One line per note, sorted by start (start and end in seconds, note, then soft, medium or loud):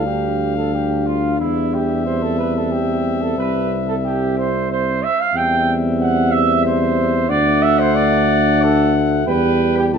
0.00 1.42 D2 soft
0.00 1.36 G3 soft
0.00 1.40 F5 soft
0.06 2.08 D4 soft
0.06 0.56 G4 soft
0.56 0.73 A4 soft
0.74 1.08 G4 medium
1.07 1.38 F4 medium
1.39 3.37 E2 soft
1.39 5.03 G3 soft
1.39 1.75 E4 medium
1.39 5.03 E5 soft
1.74 2.05 G4 medium
2.05 5.07 C4 soft
2.05 2.24 C5 medium
2.22 2.38 A4 medium
2.39 2.55 B4 medium
2.56 2.73 A4 soft
2.72 3.23 G4 soft
3.22 3.37 A4 medium
3.38 5.03 C2 soft
3.38 3.73 B4 medium
3.88 3.95 A4 medium
4.05 4.36 G4 medium
4.38 4.69 C5 medium
4.72 5.05 C5 medium
5.03 5.22 E5 medium
5.20 5.38 F5 medium
5.33 7.31 E2 medium
5.33 7.26 G3 medium
5.33 7.25 C4 medium
5.33 7.31 E5 medium
5.33 5.77 G5 medium
6.01 6.33 F#5 medium
6.31 6.64 E5 medium
6.65 7.31 C5 medium
7.29 9.27 D2 medium
7.29 9.30 A3 medium
7.29 9.23 D4 medium
7.29 7.64 D5 medium
7.29 9.29 F#5 medium
7.62 7.81 E5 medium
7.79 7.97 C5 medium
7.95 8.64 D5 medium
8.62 8.95 A4 medium
9.27 9.96 E2 medium
9.27 9.95 G3 medium
9.27 9.96 G4 medium
9.27 9.74 B4 medium
9.27 9.94 G5 medium
9.78 9.85 G4 medium
9.94 9.98 C2 medium
9.94 9.98 E4 soft
9.94 9.98 A4 medium
9.94 9.98 A5 medium